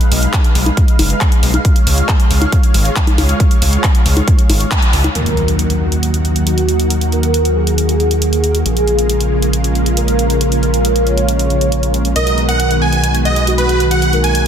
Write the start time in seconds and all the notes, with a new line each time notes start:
Already playing: G#3 D#4 B4 F5
0.01 closed hi-hat
0.12 B1, open hi-hat
0.23 closed hi-hat
0.33 kick, clap, closed hi-hat
0.44 closed hi-hat
0.55 B1, open hi-hat
0.66 closed hi-hat, high conga
0.77 kick, closed hi-hat
0.88 closed hi-hat
0.99 F#1, open hi-hat, high conga
1.10 closed hi-hat
1.21 kick, clap, closed hi-hat
1.32 closed hi-hat
1.43 B1, open hi-hat
1.54 closed hi-hat, high conga
1.65 G#3 F4 C#5, kick, closed hi-hat
1.76 closed hi-hat
1.87 C#2, open hi-hat
1.98 closed hi-hat
2.09 kick, clap, closed hi-hat
2.20 closed hi-hat
2.30 C#2, open hi-hat
2.42 closed hi-hat, high conga
2.52 kick, closed hi-hat
2.63 closed hi-hat
2.74 G#1, open hi-hat
2.85 closed hi-hat
2.96 kick, clap, closed hi-hat
3.07 closed hi-hat, high conga
3.18 C#2, open hi-hat, high conga
3.29 closed hi-hat
3.40 kick, closed hi-hat
3.51 closed hi-hat
3.62 C#2, open hi-hat
3.73 closed hi-hat
3.84 kick, clap, closed hi-hat
3.95 closed hi-hat
4.06 C#2, open hi-hat
4.17 closed hi-hat, high conga
4.28 kick, closed hi-hat
4.39 closed hi-hat
4.50 G#1, open hi-hat, high conga
4.61 closed hi-hat
4.71 kick, clap, closed hi-hat
4.82 closed hi-hat
4.93 C#2, open hi-hat
5.04 closed hi-hat, high conga
5.15 D#2 D#3 F#3 A#3 F#4 A#4, closed hi-hat, impact
5.26 closed hi-hat
5.37 closed hi-hat
5.48 closed hi-hat
5.59 closed hi-hat
5.70 closed hi-hat
5.92 closed hi-hat
6.03 closed hi-hat
6.14 closed hi-hat
6.25 closed hi-hat
6.36 closed hi-hat
6.46 F#4, closed hi-hat
6.58 closed hi-hat
6.69 closed hi-hat
6.80 closed hi-hat
6.90 closed hi-hat
7.01 closed hi-hat
7.12 A#4, closed hi-hat
7.23 closed hi-hat
7.34 closed hi-hat
7.45 closed hi-hat
7.56 G#4
7.67 closed hi-hat
7.78 closed hi-hat
7.89 closed hi-hat
8.00 closed hi-hat
8.11 closed hi-hat
8.22 closed hi-hat
8.33 closed hi-hat
8.44 closed hi-hat
8.55 closed hi-hat
8.66 A#1 C#3 G#3 F4 G#4, closed hi-hat
8.77 closed hi-hat
8.88 closed hi-hat
8.99 closed hi-hat
9.10 closed hi-hat
9.21 closed hi-hat
9.42 closed hi-hat
9.53 closed hi-hat
9.64 closed hi-hat
9.75 closed hi-hat
9.86 closed hi-hat
9.97 A#4, closed hi-hat
10.08 closed hi-hat
10.19 closed hi-hat
10.30 closed hi-hat
10.41 closed hi-hat
10.52 closed hi-hat
10.63 A#4, closed hi-hat
10.74 closed hi-hat
10.85 closed hi-hat
10.96 closed hi-hat
11.06 C#5, closed hi-hat
11.18 closed hi-hat
11.29 closed hi-hat
11.39 closed hi-hat
11.50 closed hi-hat
11.61 closed hi-hat
11.72 closed hi-hat
11.83 closed hi-hat
11.94 closed hi-hat
12.05 closed hi-hat
12.16 B1 D#3 G#3 B3 F#4 A#4 D#5, closed hi-hat
12.27 closed hi-hat
12.38 closed hi-hat
12.48 F#5, closed hi-hat
12.60 closed hi-hat
12.71 closed hi-hat
12.81 G#5
12.93 closed hi-hat
13.04 closed hi-hat
13.15 closed hi-hat
13.25 D#5, closed hi-hat
13.36 closed hi-hat
13.47 F#4, closed hi-hat
13.58 B4, closed hi-hat
13.69 closed hi-hat
13.80 closed hi-hat
13.91 A#3 F#5, closed hi-hat
14.02 closed hi-hat
14.13 A#4, closed hi-hat
14.24 G#5, closed hi-hat
14.35 closed hi-hat